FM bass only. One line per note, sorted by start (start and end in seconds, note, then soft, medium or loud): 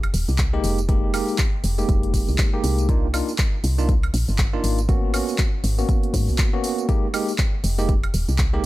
0.14 0.24 D#1 loud
0.29 0.59 C2 medium
0.64 1.22 F1 medium
1.64 1.83 F1 loud
1.89 2.22 F1 loud
2.29 2.36 C2 medium
2.64 3.22 C2 loud
3.64 4.09 C2 loud
4.14 4.24 A#1 loud
4.28 4.59 G1 medium
4.64 5.22 G#1 medium
5.64 5.83 G#1 loud
6.14 6.30 G#2 medium
6.28 6.36 B1 medium
7.64 8.09 F1 loud
8.14 8.25 D#1 loud
8.29 8.59 C2 medium